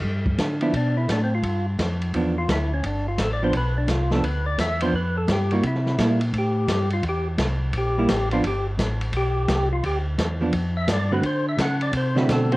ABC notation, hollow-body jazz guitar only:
X:1
M:4/4
L:1/8
Q:"Swing" 1/4=172
K:Gmix
V:1 name="Hollow-body jazz guitar"
z3 [F,B,D] z4 | z4 [F,B,D] z3 | z3 [F,B,D] z3 [F,B,D] | z3 [F,B,D] z3 [G,_B,E] |
z2 [G,_B,E] z4 z | z4 z [G,_B,E] z [F,=B,D] | z8 | z3 [F,B,D] z3 [D,A,C^F] |
z4 z [D,A,C^F]2 [D,A,CF] |]